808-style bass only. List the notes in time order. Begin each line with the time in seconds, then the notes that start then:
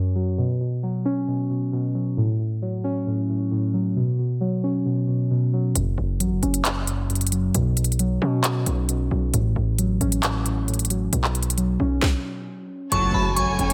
5.75 F#1
5.98 F#1
6.20 A1
6.31 F#1
6.43 F#1
7.55 B1
8.22 B2
8.66 B1
9.11 B1
9.34 A1
9.56 A1
10.01 A1
11.13 B1
11.80 B1
12.92 F#1
13.14 F#1
13.37 A1
13.48 F#1
13.59 F#1